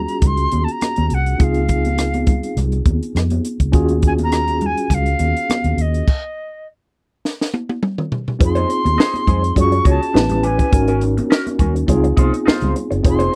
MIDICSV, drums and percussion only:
0, 0, Header, 1, 2, 480
1, 0, Start_track
1, 0, Tempo, 582524
1, 1153, Time_signature, 4, 2, 24, 8
1, 11002, End_track
2, 0, Start_track
2, 0, Title_t, "Drums"
2, 70, Note_on_c, 9, 42, 45
2, 152, Note_off_c, 9, 42, 0
2, 179, Note_on_c, 9, 42, 73
2, 182, Note_on_c, 9, 36, 80
2, 185, Note_on_c, 9, 37, 28
2, 195, Note_on_c, 9, 62, 26
2, 195, Note_on_c, 9, 64, 62
2, 262, Note_off_c, 9, 42, 0
2, 264, Note_off_c, 9, 36, 0
2, 267, Note_off_c, 9, 37, 0
2, 278, Note_off_c, 9, 62, 0
2, 278, Note_off_c, 9, 64, 0
2, 307, Note_on_c, 9, 42, 42
2, 390, Note_off_c, 9, 42, 0
2, 425, Note_on_c, 9, 42, 57
2, 431, Note_on_c, 9, 63, 57
2, 508, Note_off_c, 9, 42, 0
2, 513, Note_off_c, 9, 63, 0
2, 563, Note_on_c, 9, 42, 46
2, 645, Note_off_c, 9, 42, 0
2, 671, Note_on_c, 9, 42, 73
2, 675, Note_on_c, 9, 63, 61
2, 678, Note_on_c, 9, 37, 92
2, 753, Note_off_c, 9, 42, 0
2, 757, Note_off_c, 9, 63, 0
2, 761, Note_off_c, 9, 37, 0
2, 792, Note_on_c, 9, 42, 45
2, 805, Note_on_c, 9, 62, 28
2, 805, Note_on_c, 9, 63, 57
2, 875, Note_off_c, 9, 42, 0
2, 888, Note_off_c, 9, 62, 0
2, 888, Note_off_c, 9, 63, 0
2, 907, Note_on_c, 9, 42, 62
2, 990, Note_off_c, 9, 42, 0
2, 1040, Note_on_c, 9, 42, 39
2, 1123, Note_off_c, 9, 42, 0
2, 1151, Note_on_c, 9, 42, 75
2, 1153, Note_on_c, 9, 36, 100
2, 1162, Note_on_c, 9, 62, 28
2, 1233, Note_off_c, 9, 42, 0
2, 1235, Note_off_c, 9, 36, 0
2, 1244, Note_off_c, 9, 62, 0
2, 1272, Note_on_c, 9, 42, 44
2, 1297, Note_on_c, 9, 63, 36
2, 1354, Note_off_c, 9, 42, 0
2, 1380, Note_off_c, 9, 63, 0
2, 1388, Note_on_c, 9, 42, 67
2, 1393, Note_on_c, 9, 36, 81
2, 1471, Note_off_c, 9, 42, 0
2, 1476, Note_off_c, 9, 36, 0
2, 1522, Note_on_c, 9, 42, 45
2, 1536, Note_on_c, 9, 63, 61
2, 1604, Note_off_c, 9, 42, 0
2, 1618, Note_off_c, 9, 63, 0
2, 1632, Note_on_c, 9, 42, 79
2, 1637, Note_on_c, 9, 37, 100
2, 1714, Note_off_c, 9, 42, 0
2, 1719, Note_off_c, 9, 37, 0
2, 1761, Note_on_c, 9, 42, 45
2, 1767, Note_on_c, 9, 62, 22
2, 1767, Note_on_c, 9, 63, 54
2, 1843, Note_off_c, 9, 42, 0
2, 1849, Note_off_c, 9, 62, 0
2, 1849, Note_off_c, 9, 63, 0
2, 1867, Note_on_c, 9, 42, 55
2, 1871, Note_on_c, 9, 36, 80
2, 1884, Note_on_c, 9, 64, 59
2, 1950, Note_off_c, 9, 42, 0
2, 1953, Note_off_c, 9, 36, 0
2, 1966, Note_off_c, 9, 64, 0
2, 2005, Note_on_c, 9, 42, 48
2, 2088, Note_off_c, 9, 42, 0
2, 2118, Note_on_c, 9, 42, 81
2, 2122, Note_on_c, 9, 62, 29
2, 2122, Note_on_c, 9, 64, 59
2, 2124, Note_on_c, 9, 37, 28
2, 2200, Note_off_c, 9, 42, 0
2, 2204, Note_off_c, 9, 62, 0
2, 2204, Note_off_c, 9, 64, 0
2, 2206, Note_off_c, 9, 37, 0
2, 2242, Note_on_c, 9, 42, 43
2, 2249, Note_on_c, 9, 62, 25
2, 2324, Note_off_c, 9, 42, 0
2, 2332, Note_off_c, 9, 62, 0
2, 2353, Note_on_c, 9, 36, 83
2, 2353, Note_on_c, 9, 42, 54
2, 2355, Note_on_c, 9, 63, 56
2, 2435, Note_off_c, 9, 42, 0
2, 2436, Note_off_c, 9, 36, 0
2, 2438, Note_off_c, 9, 63, 0
2, 2494, Note_on_c, 9, 42, 48
2, 2576, Note_off_c, 9, 42, 0
2, 2602, Note_on_c, 9, 63, 58
2, 2604, Note_on_c, 9, 42, 71
2, 2612, Note_on_c, 9, 37, 97
2, 2684, Note_off_c, 9, 63, 0
2, 2687, Note_off_c, 9, 42, 0
2, 2695, Note_off_c, 9, 37, 0
2, 2722, Note_on_c, 9, 42, 45
2, 2731, Note_on_c, 9, 63, 62
2, 2804, Note_off_c, 9, 42, 0
2, 2813, Note_off_c, 9, 63, 0
2, 2840, Note_on_c, 9, 42, 60
2, 2922, Note_off_c, 9, 42, 0
2, 2966, Note_on_c, 9, 36, 66
2, 2966, Note_on_c, 9, 42, 41
2, 3048, Note_off_c, 9, 36, 0
2, 3049, Note_off_c, 9, 42, 0
2, 3074, Note_on_c, 9, 42, 73
2, 3077, Note_on_c, 9, 36, 102
2, 3157, Note_off_c, 9, 42, 0
2, 3159, Note_off_c, 9, 36, 0
2, 3202, Note_on_c, 9, 42, 47
2, 3215, Note_on_c, 9, 62, 21
2, 3215, Note_on_c, 9, 63, 33
2, 3284, Note_off_c, 9, 42, 0
2, 3297, Note_off_c, 9, 62, 0
2, 3297, Note_off_c, 9, 63, 0
2, 3316, Note_on_c, 9, 42, 68
2, 3319, Note_on_c, 9, 36, 79
2, 3398, Note_off_c, 9, 42, 0
2, 3402, Note_off_c, 9, 36, 0
2, 3448, Note_on_c, 9, 42, 45
2, 3454, Note_on_c, 9, 63, 66
2, 3531, Note_off_c, 9, 42, 0
2, 3537, Note_off_c, 9, 63, 0
2, 3559, Note_on_c, 9, 42, 75
2, 3564, Note_on_c, 9, 37, 100
2, 3642, Note_off_c, 9, 42, 0
2, 3646, Note_off_c, 9, 37, 0
2, 3690, Note_on_c, 9, 42, 41
2, 3692, Note_on_c, 9, 63, 54
2, 3772, Note_off_c, 9, 42, 0
2, 3775, Note_off_c, 9, 63, 0
2, 3798, Note_on_c, 9, 42, 50
2, 3805, Note_on_c, 9, 64, 61
2, 3881, Note_off_c, 9, 42, 0
2, 3887, Note_off_c, 9, 64, 0
2, 3934, Note_on_c, 9, 42, 46
2, 4017, Note_off_c, 9, 42, 0
2, 4038, Note_on_c, 9, 36, 72
2, 4043, Note_on_c, 9, 42, 80
2, 4048, Note_on_c, 9, 37, 29
2, 4049, Note_on_c, 9, 64, 60
2, 4120, Note_off_c, 9, 36, 0
2, 4125, Note_off_c, 9, 42, 0
2, 4131, Note_off_c, 9, 37, 0
2, 4131, Note_off_c, 9, 64, 0
2, 4168, Note_on_c, 9, 42, 43
2, 4251, Note_off_c, 9, 42, 0
2, 4277, Note_on_c, 9, 42, 57
2, 4281, Note_on_c, 9, 63, 65
2, 4360, Note_off_c, 9, 42, 0
2, 4363, Note_off_c, 9, 63, 0
2, 4422, Note_on_c, 9, 42, 46
2, 4504, Note_off_c, 9, 42, 0
2, 4529, Note_on_c, 9, 63, 60
2, 4530, Note_on_c, 9, 42, 78
2, 4538, Note_on_c, 9, 37, 101
2, 4611, Note_off_c, 9, 63, 0
2, 4613, Note_off_c, 9, 42, 0
2, 4620, Note_off_c, 9, 37, 0
2, 4649, Note_on_c, 9, 42, 45
2, 4660, Note_on_c, 9, 62, 28
2, 4660, Note_on_c, 9, 63, 59
2, 4731, Note_off_c, 9, 42, 0
2, 4742, Note_off_c, 9, 62, 0
2, 4742, Note_off_c, 9, 63, 0
2, 4764, Note_on_c, 9, 42, 60
2, 4847, Note_off_c, 9, 42, 0
2, 4897, Note_on_c, 9, 42, 39
2, 4980, Note_off_c, 9, 42, 0
2, 5007, Note_on_c, 9, 36, 86
2, 5010, Note_on_c, 9, 49, 77
2, 5089, Note_off_c, 9, 36, 0
2, 5092, Note_off_c, 9, 49, 0
2, 5976, Note_on_c, 9, 38, 45
2, 6058, Note_off_c, 9, 38, 0
2, 6109, Note_on_c, 9, 38, 52
2, 6192, Note_off_c, 9, 38, 0
2, 6210, Note_on_c, 9, 48, 61
2, 6292, Note_off_c, 9, 48, 0
2, 6340, Note_on_c, 9, 48, 57
2, 6423, Note_off_c, 9, 48, 0
2, 6449, Note_on_c, 9, 47, 74
2, 6531, Note_off_c, 9, 47, 0
2, 6578, Note_on_c, 9, 45, 67
2, 6661, Note_off_c, 9, 45, 0
2, 6690, Note_on_c, 9, 43, 79
2, 6772, Note_off_c, 9, 43, 0
2, 6821, Note_on_c, 9, 43, 67
2, 6903, Note_off_c, 9, 43, 0
2, 6926, Note_on_c, 9, 36, 101
2, 6928, Note_on_c, 9, 62, 30
2, 6931, Note_on_c, 9, 42, 81
2, 7008, Note_off_c, 9, 36, 0
2, 7011, Note_off_c, 9, 62, 0
2, 7013, Note_off_c, 9, 42, 0
2, 7048, Note_on_c, 9, 42, 45
2, 7064, Note_on_c, 9, 62, 24
2, 7064, Note_on_c, 9, 63, 36
2, 7131, Note_off_c, 9, 42, 0
2, 7146, Note_off_c, 9, 62, 0
2, 7146, Note_off_c, 9, 63, 0
2, 7168, Note_on_c, 9, 42, 77
2, 7250, Note_off_c, 9, 42, 0
2, 7296, Note_on_c, 9, 63, 69
2, 7300, Note_on_c, 9, 42, 46
2, 7379, Note_off_c, 9, 63, 0
2, 7382, Note_off_c, 9, 42, 0
2, 7404, Note_on_c, 9, 62, 31
2, 7416, Note_on_c, 9, 38, 107
2, 7486, Note_off_c, 9, 62, 0
2, 7499, Note_off_c, 9, 38, 0
2, 7529, Note_on_c, 9, 63, 57
2, 7544, Note_on_c, 9, 42, 47
2, 7611, Note_off_c, 9, 63, 0
2, 7626, Note_off_c, 9, 42, 0
2, 7642, Note_on_c, 9, 36, 80
2, 7642, Note_on_c, 9, 64, 61
2, 7646, Note_on_c, 9, 42, 57
2, 7724, Note_off_c, 9, 36, 0
2, 7725, Note_off_c, 9, 64, 0
2, 7729, Note_off_c, 9, 42, 0
2, 7779, Note_on_c, 9, 42, 51
2, 7861, Note_off_c, 9, 42, 0
2, 7878, Note_on_c, 9, 64, 62
2, 7879, Note_on_c, 9, 36, 85
2, 7886, Note_on_c, 9, 42, 87
2, 7961, Note_off_c, 9, 64, 0
2, 7962, Note_off_c, 9, 36, 0
2, 7968, Note_off_c, 9, 42, 0
2, 8010, Note_on_c, 9, 42, 43
2, 8093, Note_off_c, 9, 42, 0
2, 8116, Note_on_c, 9, 63, 59
2, 8118, Note_on_c, 9, 36, 88
2, 8121, Note_on_c, 9, 42, 55
2, 8198, Note_off_c, 9, 63, 0
2, 8201, Note_off_c, 9, 36, 0
2, 8203, Note_off_c, 9, 42, 0
2, 8262, Note_on_c, 9, 42, 49
2, 8344, Note_off_c, 9, 42, 0
2, 8361, Note_on_c, 9, 62, 30
2, 8361, Note_on_c, 9, 63, 64
2, 8376, Note_on_c, 9, 38, 113
2, 8443, Note_off_c, 9, 62, 0
2, 8443, Note_off_c, 9, 63, 0
2, 8458, Note_off_c, 9, 38, 0
2, 8482, Note_on_c, 9, 42, 50
2, 8488, Note_on_c, 9, 62, 28
2, 8488, Note_on_c, 9, 63, 63
2, 8488, Note_on_c, 9, 64, 58
2, 8565, Note_off_c, 9, 42, 0
2, 8570, Note_off_c, 9, 62, 0
2, 8570, Note_off_c, 9, 63, 0
2, 8570, Note_off_c, 9, 64, 0
2, 8598, Note_on_c, 9, 42, 67
2, 8680, Note_off_c, 9, 42, 0
2, 8727, Note_on_c, 9, 36, 71
2, 8727, Note_on_c, 9, 42, 45
2, 8809, Note_off_c, 9, 36, 0
2, 8810, Note_off_c, 9, 42, 0
2, 8838, Note_on_c, 9, 36, 109
2, 8838, Note_on_c, 9, 42, 86
2, 8843, Note_on_c, 9, 62, 29
2, 8920, Note_off_c, 9, 36, 0
2, 8921, Note_off_c, 9, 42, 0
2, 8925, Note_off_c, 9, 62, 0
2, 8962, Note_on_c, 9, 42, 49
2, 8975, Note_on_c, 9, 63, 37
2, 9045, Note_off_c, 9, 42, 0
2, 9057, Note_off_c, 9, 63, 0
2, 9075, Note_on_c, 9, 42, 72
2, 9157, Note_off_c, 9, 42, 0
2, 9210, Note_on_c, 9, 42, 46
2, 9213, Note_on_c, 9, 63, 66
2, 9292, Note_off_c, 9, 42, 0
2, 9296, Note_off_c, 9, 63, 0
2, 9315, Note_on_c, 9, 62, 31
2, 9327, Note_on_c, 9, 38, 101
2, 9398, Note_off_c, 9, 62, 0
2, 9409, Note_off_c, 9, 38, 0
2, 9449, Note_on_c, 9, 62, 25
2, 9449, Note_on_c, 9, 63, 57
2, 9450, Note_on_c, 9, 42, 50
2, 9531, Note_off_c, 9, 62, 0
2, 9531, Note_off_c, 9, 63, 0
2, 9532, Note_off_c, 9, 42, 0
2, 9552, Note_on_c, 9, 36, 83
2, 9552, Note_on_c, 9, 42, 59
2, 9559, Note_on_c, 9, 64, 60
2, 9634, Note_off_c, 9, 42, 0
2, 9635, Note_off_c, 9, 36, 0
2, 9641, Note_off_c, 9, 64, 0
2, 9691, Note_on_c, 9, 42, 48
2, 9773, Note_off_c, 9, 42, 0
2, 9791, Note_on_c, 9, 36, 79
2, 9795, Note_on_c, 9, 62, 28
2, 9795, Note_on_c, 9, 64, 64
2, 9798, Note_on_c, 9, 42, 87
2, 9873, Note_off_c, 9, 36, 0
2, 9878, Note_off_c, 9, 62, 0
2, 9878, Note_off_c, 9, 64, 0
2, 9880, Note_off_c, 9, 42, 0
2, 9923, Note_on_c, 9, 42, 45
2, 10006, Note_off_c, 9, 42, 0
2, 10031, Note_on_c, 9, 36, 93
2, 10033, Note_on_c, 9, 42, 54
2, 10039, Note_on_c, 9, 63, 60
2, 10113, Note_off_c, 9, 36, 0
2, 10116, Note_off_c, 9, 42, 0
2, 10122, Note_off_c, 9, 63, 0
2, 10167, Note_on_c, 9, 42, 52
2, 10250, Note_off_c, 9, 42, 0
2, 10280, Note_on_c, 9, 62, 30
2, 10280, Note_on_c, 9, 63, 67
2, 10285, Note_on_c, 9, 38, 111
2, 10363, Note_off_c, 9, 62, 0
2, 10363, Note_off_c, 9, 63, 0
2, 10368, Note_off_c, 9, 38, 0
2, 10394, Note_on_c, 9, 42, 46
2, 10406, Note_on_c, 9, 62, 31
2, 10406, Note_on_c, 9, 63, 63
2, 10406, Note_on_c, 9, 64, 64
2, 10476, Note_off_c, 9, 42, 0
2, 10488, Note_off_c, 9, 62, 0
2, 10488, Note_off_c, 9, 63, 0
2, 10488, Note_off_c, 9, 64, 0
2, 10514, Note_on_c, 9, 42, 62
2, 10596, Note_off_c, 9, 42, 0
2, 10642, Note_on_c, 9, 42, 41
2, 10725, Note_off_c, 9, 42, 0
2, 10749, Note_on_c, 9, 36, 103
2, 10752, Note_on_c, 9, 42, 84
2, 10832, Note_off_c, 9, 36, 0
2, 10834, Note_off_c, 9, 42, 0
2, 10874, Note_on_c, 9, 42, 49
2, 10884, Note_on_c, 9, 62, 26
2, 10884, Note_on_c, 9, 63, 40
2, 10957, Note_off_c, 9, 42, 0
2, 10966, Note_off_c, 9, 62, 0
2, 10966, Note_off_c, 9, 63, 0
2, 11002, End_track
0, 0, End_of_file